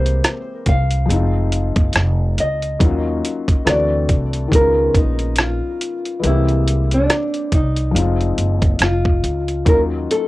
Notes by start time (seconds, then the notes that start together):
Already playing: C2 E3 G#3 A#3 C4 G4 C5
0.06 closed hi-hat
0.24 cross-stick, closed hi-hat
0.66 C2 F5, kick, closed hi-hat
0.91 closed hi-hat
1.06 F1 F3 G#3
1.10 C4 D#4, closed hi-hat
1.14 F4
1.52 closed hi-hat
1.76 F#1, kick, closed hi-hat
1.93 F1, cross-stick, closed hi-hat
2.38 C#2 D#5, closed hi-hat
2.62 closed hi-hat
2.79 D#2 F#3 A#3 C#4 D#4, kick, closed hi-hat
2.84 F4
3.25 closed hi-hat
3.48 kick, closed hi-hat
3.65 D2 E3 A3 C4 D4 D5, cross-stick, closed hi-hat
3.69 F#4
4.09 C2, kick, closed hi-hat
4.33 closed hi-hat
4.48 C#2 D#3 G#3, kick
4.52 B3 C#4 A#4, closed hi-hat
4.57 F4
4.95 A#1 D#4, kick, closed hi-hat
5.19 closed hi-hat
5.36 cross-stick, closed hi-hat
5.40 F4
5.81 closed hi-hat
6.05 closed hi-hat
6.19 E3 G#3
6.24 C2 A#3 C4 E4, closed hi-hat
6.28 G4
6.49 closed hi-hat
6.68 closed hi-hat
6.91 D4, closed hi-hat
7.10 cross-stick, closed hi-hat
7.34 closed hi-hat
7.52 C2 D#4, kick, closed hi-hat
7.76 closed hi-hat
7.91 F1 F3 G#3
7.96 C4 D#4, closed hi-hat
8.00 F4
8.21 closed hi-hat
8.38 F#1, closed hi-hat
8.62 kick, closed hi-hat
8.79 F1 F4, cross-stick, closed hi-hat
9.05 kick
9.23 C#2, closed hi-hat
9.48 closed hi-hat
9.65 D#2 F#3 A#3 C#4 D#4 A#4, kick, closed hi-hat
9.70 F4
10.11 A4, closed hi-hat